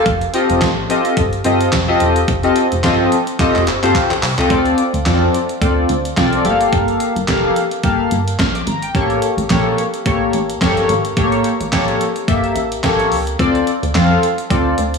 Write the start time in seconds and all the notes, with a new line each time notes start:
0.06 F1, kick, closed hi-hat
0.21 closed hi-hat
0.33 C4 F4 G4 A4 D#5, closed hi-hat
0.50 F1, closed hi-hat
0.61 A1, kick, snare, clap, closed hi-hat
0.89 C4 F4 G4 A4 D#5, closed hi-hat
1.05 closed hi-hat
1.17 G1, kick, closed hi-hat
1.33 closed hi-hat
1.44 G1 C4 F4 G4 A4 D#5, closed hi-hat
1.61 closed hi-hat
1.73 F1, kick, snare, clap, closed hi-hat
1.88 C4 F4 G4 A4 D#5
2.00 E1, closed hi-hat
2.16 closed hi-hat
2.28 F1, kick, closed hi-hat
2.43 C4 F4 G4 A4 D#5, closed hi-hat
2.56 closed hi-hat
2.72 F1, closed hi-hat
2.83 G1 C4 F4 G4 A4 D#5, kick, snare, clap, closed hi-hat
3.12 closed hi-hat
3.27 closed hi-hat
3.39 C4 F4 G4 A4 D#5, kick, clap, closed hi-hat
3.55 F1, clap, closed hi-hat
3.67 G1, clap, closed hi-hat
3.82 G1 C4 F4 G4 A4 C5, clap, closed hi-hat
3.95 kick, clap, closed hi-hat
4.10 A1, clap, closed hi-hat
4.22 C2, clap, open hi-hat
4.38 C#2 C4 F4 G4 A4 D#5, clap, closed hi-hat
4.50 D2 C4 F4 A4 D5, kick, closed hi-hat
4.66 closed hi-hat
4.78 closed hi-hat
4.94 D2, closed hi-hat
5.06 F2 C4 F4 A4 D5, kick, snare, clap, closed hi-hat
5.34 closed hi-hat
5.49 closed hi-hat
5.61 D2 C4 F4 A4 D5, kick, closed hi-hat
5.89 D2, closed hi-hat
6.05 closed hi-hat
6.17 C2 C4 F4 A4 D5, kick, snare, clap, closed hi-hat
6.33 closed hi-hat
6.44 G1 A3 G4 A4 F5, closed hi-hat
6.51 A#3
6.61 closed hi-hat
6.73 G1, kick, closed hi-hat
6.88 closed hi-hat
7.00 closed hi-hat
7.16 G1, closed hi-hat
7.28 F1 A#3 G4 A4 F5, kick, snare, clap, closed hi-hat
7.56 closed hi-hat
7.71 closed hi-hat
7.83 G1 A#3 G4 A4 F5, kick, closed hi-hat
8.11 G1, closed hi-hat
8.28 closed hi-hat
8.39 A#1 F6, kick, snare, clap, closed hi-hat
8.55 D6, closed hi-hat
8.67 G#1 A#5, closed hi-hat
8.82 G5, closed hi-hat
8.95 A1 A#3 G4 A4 C#5, kick, closed hi-hat
9.10 closed hi-hat
9.22 closed hi-hat
9.37 A1, closed hi-hat
9.50 A#1 A#3 G4 A4 C#5, kick, snare, clap, closed hi-hat
9.78 closed hi-hat
9.94 closed hi-hat
10.06 A1 A#3 G4 A4 C#5, kick, closed hi-hat
10.33 A1, closed hi-hat
10.50 closed hi-hat
10.61 G1 A#3 G4 A4 C#5, kick, snare, clap, closed hi-hat
10.77 closed hi-hat
10.89 G#1, closed hi-hat
11.05 closed hi-hat
11.16 A1 A#3 G4 A4 C#5, kick, closed hi-hat
11.32 closed hi-hat
11.44 closed hi-hat
11.60 A1, closed hi-hat
11.72 A1 A#3 G4 A4 C#5, kick, snare, clap, closed hi-hat
11.88 closed hi-hat
12.01 closed hi-hat
12.16 closed hi-hat
12.28 G1 A#3 G4 A4 E5, kick, closed hi-hat
12.44 closed hi-hat
12.56 A1, closed hi-hat
12.72 closed hi-hat
12.83 A1 A#3 G4 A4 C#5, kick, snare, clap, closed hi-hat
12.99 closed hi-hat
13.12 C#2, open hi-hat
13.27 closed hi-hat
13.39 D2 C4 F4 A4 D5, kick, closed hi-hat
13.55 closed hi-hat
13.67 closed hi-hat
13.83 D2, closed hi-hat
13.94 F2 C4 F4 A4 F5, kick, snare, clap, closed hi-hat
14.23 closed hi-hat
14.38 closed hi-hat
14.50 D2 C4 F4 A4 D5, kick, closed hi-hat
14.78 D2, closed hi-hat
14.94 closed hi-hat